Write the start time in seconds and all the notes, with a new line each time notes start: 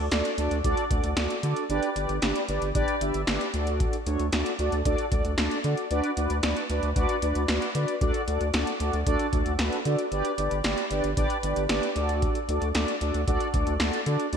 0.11 D2 D4 F#4 A4 D5, snare, closed hi-hat
0.25 closed hi-hat
0.38 D2 D4 F#4 A4 D5, closed hi-hat
0.51 D2, closed hi-hat
0.64 D2 D4 F#4 A4 D5, kick, closed hi-hat
0.77 closed hi-hat
0.91 D2 D4 F#4 A4 D5, kick, closed hi-hat
1.04 D2, closed hi-hat
1.17 D2 D4 F#4 A4 D5, snare, closed hi-hat
1.30 closed hi-hat
1.43 D3 D4 F#4 A4 D5, closed hi-hat
1.56 closed hi-hat
1.70 G1 D4 G4 B4 D5, closed hi-hat
1.83 closed hi-hat
1.96 G1 D4 G4 B4 D5, closed hi-hat
2.09 G1, closed hi-hat
2.22 G1 D4 G4 B4 D5, snare, closed hi-hat
2.36 closed hi-hat
2.49 G1 D4 G4 B4 D5, closed hi-hat
2.62 G1, closed hi-hat
2.75 G1 D4 G4 B4 D5, kick, closed hi-hat
2.88 closed hi-hat
3.01 G1 D4 G4 B4 E5, closed hi-hat
3.14 G1, closed hi-hat
3.27 G1 D4 G4 B4 D5, snare, closed hi-hat
3.41 closed hi-hat
3.54 D2 D4 F#4 A4 D5, closed hi-hat
3.67 closed hi-hat
3.80 kick, closed hi-hat
3.93 closed hi-hat
4.06 D2 D4 F#4 A4 C#5, closed hi-hat
4.20 D2, closed hi-hat
4.32 D2 D4 F#4 A4 D5, snare, closed hi-hat
4.46 closed hi-hat
4.59 D2 D4 F#4 A4 D5, closed hi-hat
4.72 D2, closed hi-hat
4.85 D2 D4 F#4 A4 D5, kick, closed hi-hat
4.98 closed hi-hat
5.12 D2 D4 F#4 A4 D5, kick, closed hi-hat
5.25 D2, closed hi-hat
5.38 D2 D4 F#4 A4 D5, snare, closed hi-hat
5.51 closed hi-hat
5.64 D3 D4 F#4 A4 D5, closed hi-hat
5.77 closed hi-hat
5.91 D2 D4 F#4 B4 D5, closed hi-hat
6.04 closed hi-hat
6.17 D2 D4 F#4 B4 D5, closed hi-hat
6.30 D2, closed hi-hat
6.43 D2 D4 F#4 B4 D5, snare, closed hi-hat
6.57 closed hi-hat
6.70 D2 D4 F#4 B4 D5, closed hi-hat
6.83 D2, closed hi-hat
6.96 D2 D4 F#4 B4 D5, kick, closed hi-hat
7.09 closed hi-hat
7.22 D2 D4 F#4 B4 D5, closed hi-hat
7.35 D2, closed hi-hat
7.48 D2 D4 F#4 B4 D5, snare, closed hi-hat
7.62 closed hi-hat
7.75 D3 D4 F#4 B4 D5, closed hi-hat
7.88 closed hi-hat
8.01 D2 D4 F#4 A4 D5, kick, closed hi-hat
8.14 closed hi-hat
8.28 D2 D4 F#4 A4 D5, closed hi-hat
8.41 D2, closed hi-hat
8.54 D2 D4 F#4 A4 D5, snare, closed hi-hat
8.67 closed hi-hat
8.80 D2 D4 F#4 A4 D5, closed hi-hat
8.93 D2, closed hi-hat
9.07 D2 D4 F#4 A4 D5, kick, closed hi-hat
9.19 closed hi-hat
9.33 D2 D4 F#4 A4 D5, kick, closed hi-hat
9.46 D2, closed hi-hat
9.59 D2 D4 F#4 A4 B4, snare, closed hi-hat
9.73 closed hi-hat
9.85 D3 D4 F#4 A4 D5, closed hi-hat
9.99 closed hi-hat
10.12 G1 D4 G4 B4 D5, closed hi-hat
10.25 closed hi-hat
10.38 G1 D4 G4 B4 D5, closed hi-hat
10.51 G1, closed hi-hat
10.64 G1 D4 G4 B4 D5, snare, closed hi-hat
10.78 closed hi-hat
10.91 G1 D4 G4 B4 D5, closed hi-hat
11.04 G1, closed hi-hat
11.17 G1 D4 G4 B4 D5, kick, closed hi-hat
11.30 closed hi-hat
11.43 G1 D4 G4 B4 D5, closed hi-hat
11.56 G1, closed hi-hat
11.69 G1 D4 G4 B4 D5, snare, closed hi-hat
11.83 closed hi-hat
11.96 D2 D4 F#4 A4 D5, closed hi-hat
12.09 closed hi-hat
12.22 kick, closed hi-hat
12.35 closed hi-hat
12.49 D2 D4 F#4 A4 D5, closed hi-hat
12.62 D2, closed hi-hat
12.75 D2 D4 F#4 A4 D5, snare, closed hi-hat
12.88 closed hi-hat
13.01 D2 D4 F#4 A4 D5, closed hi-hat
13.14 D2, closed hi-hat
13.28 D2 D4 F#4 A4 D5, kick, closed hi-hat
13.40 closed hi-hat
13.54 D2 D4 F#4 A4 D5, kick, closed hi-hat
13.67 D2, closed hi-hat
13.80 D2 D4 F#4 A4 D5, snare, closed hi-hat
13.93 closed hi-hat
14.06 D3 D4 F#4 A4 D5, closed hi-hat
14.20 closed hi-hat
14.33 D2 D4 F#4 B4 D5, closed hi-hat